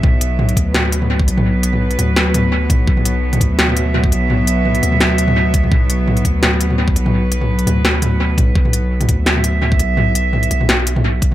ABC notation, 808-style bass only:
X:1
M:4/4
L:1/8
Q:"Swing 16ths" 1/4=169
K:Bm
V:1 name="808-style bass" clef=bass
B,,,3 D,,4 B,,,- | B,,,3 D,,4 B,,, | B,,,3 D,,4 B,,,- | B,,,3 D,,4- D,, |
B,,,3 D,,4 B,,,- | B,,,3 D,,4 B,,, | B,,,3 D,,4 B,,,- | B,,,3 B,,,4- B,,, |]